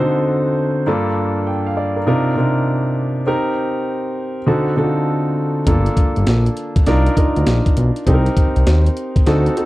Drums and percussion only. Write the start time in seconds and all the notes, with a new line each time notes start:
5.67 kick, closed hi-hat
5.86 closed hi-hat
5.97 kick, closed hi-hat
6.16 closed hi-hat
6.27 snare, closed hi-hat
6.46 closed hi-hat
6.57 closed hi-hat
6.76 kick, closed hi-hat
6.86 snare, closed hi-hat
7.06 closed hi-hat
7.17 kick, closed hi-hat
7.36 closed hi-hat
7.47 snare, closed hi-hat
7.66 kick, closed hi-hat
7.77 closed hi-hat
7.96 closed hi-hat
8.07 kick, closed hi-hat
8.26 closed hi-hat
8.37 kick, closed hi-hat
8.56 closed hi-hat
8.67 snare, closed hi-hat
8.86 closed hi-hat
8.97 closed hi-hat
9.16 kick, closed hi-hat
9.27 snare, closed hi-hat
9.46 closed hi-hat
9.57 closed hi-hat